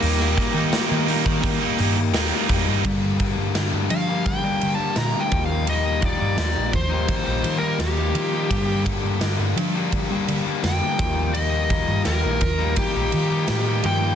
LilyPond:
<<
  \new Staff \with { instrumentName = "Lead electric guitar" } { \time 4/4 \key ees \lydian \tempo 4 = 85 <bes bes'>2. r4 | r4. f''8 \tuplet 3/2 { g''4 a''8 bes''8 g''8 f''8 } | ees''8 d''4 c''8~ \tuplet 3/2 { c''4 bes'8 } g'4~ | g'8 r2 r8 g''4 |
ees''4 bes'4 g'4. g''8 | }
  \new Staff \with { instrumentName = "Distorted electric guitar" } { \time 4/4 \key ees \lydian <ees g bes ees'>8 <ees g bes ees'>16 <g bes ees'>16 <ees g bes ees'>8 <ees g bes ees'>16 <g bes ees'>8 <g bes ees'>16 <ees g bes ees'>16 <g bes ees'>16 <ees g bes ees'>8 <ees g bes ees'>8 | <g, d g bes d'>8 <d g bes d'>8 <g, d g bes d'>16 <g bes d'>8 <g bes d'>8 <g bes d'>8 <g bes d'>16 <g, d g bes d'>16 <g bes d'>16 <ees g bes ees'>16 <g bes ees'>16 | <ees g bes ees'>8 <ees g bes ees'>8 <ees g bes ees'>16 <g bes ees'>8 <g bes ees'>8 <g bes ees'>8 <g bes ees'>16 <ees g bes ees'>16 <g bes ees'>16 <ees g bes ees'>16 <g bes ees'>16 | <g, d g bes d'>8 <d g bes d'>8 <g, d g bes d'>16 <g bes d'>8 <g bes d'>8 <g bes d'>8 <g bes d'>16 <g, d g bes d'>16 <g bes d'>16 <ees g bes ees'>16 <g bes ees'>16 |
<ees g bes ees'>8 <ees g bes ees'>8 <ees g bes ees'>16 <g bes ees'>8 <g bes ees'>8 <g bes ees'>8 <g bes ees'>16 <ees g bes ees'>16 <g bes ees'>16 <ees g bes ees'>16 <g bes ees'>16 | }
  \new Staff \with { instrumentName = "Distorted electric guitar" } { \time 4/4 \key ees \lydian <ees g bes ees'>8. <g bes ees'>16 <ees g bes ees'>8 <ees g bes ees'>8 <ees g bes ees'>16 <g bes ees'>8. <ees g bes ees'>8 <ees g bes ees'>16 <g bes ees'>16 | r1 | r1 | r1 |
r1 | }
  \new Staff \with { instrumentName = "Clean electric guitar" } { \clef bass \time 4/4 \key ees \lydian r1 | <g, d g>8 <g, d>8 <g, d>8 <g, d>8 <g, d>8 <g, d>8 <g, d>8 <ees f bes>8 | <ees f>8 <ees f>8 <ees f>8 <ees f>8 <ees f>8 <ees f>8 <ees f>8 <ees f bes>8 | <g, d g>8 <g, d>8 <g, d>8 <g, d>8 <g, d>8 <g, d>8 <g, d>8 <ees f bes>8 |
<ees f>8 <ees f>8 <ees f>8 <ees f>8 <ees f>8 <ees f>8 <ees f>8 <ees f bes>8 | }
  \new Staff \with { instrumentName = "Picked electric bass" } { \clef bass \time 4/4 \key ees \lydian ees,8 r16 ees16 r16 ees8 ees8 r16 g,8 ees,16 r16 f,16 g,16 | g,8. g,16 g,16 g,16 f8. g8 r16 bes,16 r16 ees,8~ | ees,8. g,16 ees,16 bes,,16 ees,8 r16 bes,,16 ees8 ees,8 r8 | g,8. g,16 r16 g,16 f8. g8 r16 f,16 r16 ees,8~ |
ees,8. g,16 ees,16 bes,,16 ees,8 r16 bes,,16 ees8 a,8 g,8 | }
  \new DrumStaff \with { instrumentName = "Drums" } \drummode { \time 4/4 hho16 sn16 <hho bd>8 <hho sn>8 hho16 bd16 <hho bd>8 hho8 <hho sn>8 <hho bd>8 | <bd cymr>8 <bd cymr>8 <cymr sn>8 cymr8 <bd cymr>8 cymr8 <cymr sn>8 <bd cymr>8 | cymr8 <bd cymr>8 <cymr sn>8 <bd cymr>8 <bd cymr>8 cymr8 <cymr sn>8 cymr8 | <bd cymr>8 <bd cymr>8 <cymr sn>8 cymr8 <bd cymr>8 cymr8 <cymr sn>8 <bd cymr>8 |
cymr8 <bd cymr>8 <cymr sn>8 <bd cymr>8 <bd cymr>8 cymr8 <cymr sn>8 cymr8 | }
>>